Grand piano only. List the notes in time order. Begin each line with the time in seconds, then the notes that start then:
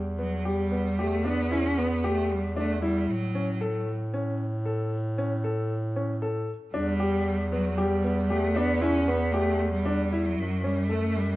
0.18 B3
0.45 G4
0.71 B3
0.99 G4
1.25 D4
1.51 E4
1.78 B3
2.04 G4
2.56 D4
2.82 E4
3.35 C#4
3.61 A4
4.14 C#4
4.66 A4
5.18 C#4
5.44 A4
5.96 C#4
6.22 A4
6.74 D4
7.00 G4
7.52 B3
7.78 G4
8.04 B3
8.30 G4
8.56 D4
8.81 E4
9.08 B3
9.34 G4
9.85 D4
10.12 E4
10.64 C#4
10.89 A4